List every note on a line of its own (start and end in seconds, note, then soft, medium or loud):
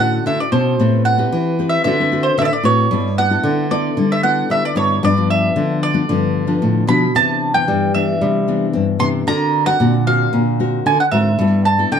0.00 0.18 A2 medium
0.00 0.24 D3 medium
0.00 0.48 C#4 medium
0.00 0.48 F#4 medium
0.00 0.49 A4 medium
0.00 0.26 F#5 medium
0.26 0.77 A2 medium
0.26 0.37 D3 medium
0.26 0.39 E5 medium
0.40 0.52 D5 medium
0.52 0.75 B2 medium
0.52 0.75 C#4 medium
0.52 0.75 F#4 soft
0.52 0.75 A4 medium
0.52 1.02 C5 medium
0.80 1.24 A2 medium
0.80 1.30 A3 medium
0.80 1.15 C4 medium
0.80 1.15 G4 medium
0.80 1.16 B4 medium
1.05 1.69 F#5 medium
1.18 1.54 C4 medium
1.18 1.54 G4 medium
1.18 1.54 B4 medium
1.32 1.77 E3 medium
1.32 1.83 E3 medium
1.59 1.83 C4 medium
1.59 1.83 G4 medium
1.59 1.84 B4 medium
1.69 1.83 E5 medium
1.84 2.30 D3 medium
1.84 2.36 D3 medium
1.84 1.95 C4 medium
1.84 1.95 F#4 medium
1.84 1.95 B4 medium
1.84 2.26 E5 medium
2.00 2.08 C4 medium
2.00 2.09 F#4 soft
2.00 2.09 B4 medium
2.12 2.46 C4 medium
2.12 2.46 F#4 medium
2.12 2.46 B4 medium
2.23 2.36 C5 medium
2.38 2.89 A2 medium
2.38 2.49 D3 medium
2.38 2.42 E5 medium
2.42 2.45 D5 medium
2.42 2.51 E5 medium
2.53 2.65 D5 medium
2.63 2.87 A2 medium
2.63 2.87 C4 medium
2.63 2.87 F#4 medium
2.63 2.87 B4 medium
2.63 3.14 C#5 medium
2.91 3.36 G2 medium
2.91 3.42 G3 medium
2.91 3.08 B3 medium
2.91 3.08 E4 medium
2.91 3.08 A4 medium
3.18 3.26 B3 medium
3.18 3.26 E4 medium
3.18 3.26 A4 medium
3.18 3.73 F#5 medium
3.30 3.66 B3 medium
3.30 3.66 E4 medium
3.30 3.67 A4 medium
3.43 3.89 D3 medium
3.43 3.95 D3 medium
3.71 4.05 B3 medium
3.71 4.05 E4 medium
3.71 4.05 A4 medium
3.71 4.12 D5 medium
3.97 4.42 D3 medium
3.97 4.48 G3 medium
4.12 4.23 E5 medium
4.23 4.72 B3 medium
4.23 4.73 E4 medium
4.23 4.73 A4 medium
4.23 4.51 F#5 medium
4.50 5.01 D3 medium
4.50 4.61 G3 medium
4.50 4.63 E5 medium
4.65 4.77 D5 medium
4.75 4.99 G2 medium
4.75 4.98 B3 medium
4.75 4.99 E4 medium
4.75 4.99 A4 medium
4.75 5.02 C#5 medium
5.03 5.53 G2 medium
5.03 5.48 G2 medium
5.03 5.11 F3 medium
5.03 5.11 B3 medium
5.03 5.12 D4 medium
5.03 5.30 D5 loud
5.17 5.52 F3 medium
5.17 5.52 B3 medium
5.17 5.53 D4 medium
5.30 5.79 E5 medium
5.56 6.06 D3 medium
5.56 6.01 D3 medium
5.56 5.92 F3 medium
5.56 5.92 B3 medium
5.56 5.92 D4 medium
5.83 6.85 D5 medium
5.94 6.04 F3 medium
5.94 6.04 B3 medium
5.94 6.04 D4 medium
6.09 6.60 G2 medium
6.09 6.54 D3 medium
6.09 6.45 F3 medium
6.09 6.45 B3 medium
6.09 6.45 D4 medium
6.47 6.84 F3 medium
6.47 6.84 B3 medium
6.47 6.84 D4 medium
6.62 6.86 A2 medium
6.62 7.13 D3 soft
6.87 7.12 B2 medium
6.87 7.06 F3 medium
6.87 7.06 B3 medium
6.87 7.06 D4 medium
6.87 7.13 B5 medium
7.15 7.60 C3 medium
7.15 7.66 C3 medium
7.15 7.51 E3 soft
7.15 7.51 B3 soft
7.15 7.52 D4 medium
7.15 7.54 A5 loud
7.54 7.90 E3 medium
7.54 7.90 B3 medium
7.54 7.90 D4 medium
7.54 7.92 G5 medium
7.68 8.19 G2 medium
7.68 8.13 G3 medium
7.94 8.44 E3 medium
7.94 8.44 B3 medium
7.94 8.44 D4 medium
7.94 9.04 E5 medium
8.21 8.72 C3 medium
8.21 8.66 G3 medium
8.48 8.96 E3 medium
8.48 8.97 B3 medium
8.48 8.97 D4 medium
8.73 9.25 G2 medium
8.73 8.85 C4 medium
8.99 9.22 C3 medium
8.99 9.23 E3 medium
8.99 9.23 B3 medium
8.99 9.23 D4 medium
8.99 9.07 C6 loud
9.27 9.72 D3 medium
9.27 9.78 D3 soft
9.27 9.63 C4 medium
9.27 9.63 F#4 soft
9.27 9.63 A#4 medium
9.27 9.66 A#5 loud
9.66 9.75 C4 medium
9.66 9.76 F#4 medium
9.66 9.76 A#4 medium
9.66 10.03 F#5 loud
9.80 10.25 A#2 medium
9.80 10.31 D3 medium
9.80 9.96 C4 medium
9.80 9.96 F#4 medium
9.80 9.96 A#4 medium
10.07 10.41 C4 medium
10.07 10.41 F#4 medium
10.07 10.41 A#4 medium
10.07 10.82 F5 medium
10.33 10.78 A#2 medium
10.33 10.84 D3 medium
10.60 10.94 C4 medium
10.60 10.94 F#4 medium
10.60 10.94 A#4 medium
10.86 10.97 D3 medium
10.86 11.37 D3 medium
10.86 10.99 G#5 medium
11.00 11.05 F#5 medium
11.11 11.35 G#2 medium
11.11 11.28 C4 medium
11.11 11.29 F#4 medium
11.11 11.29 A#4 medium
11.11 11.61 E5 medium
11.39 11.84 G2 medium
11.39 11.90 G3 medium
11.39 11.65 B3 medium
11.39 11.65 E4 medium
11.39 11.65 A4 medium
11.65 11.90 A5 medium
11.78 12.00 B3 medium
11.78 12.00 E4 medium
11.78 12.00 A4 medium
11.92 12.00 D3 medium
11.92 12.00 G5 medium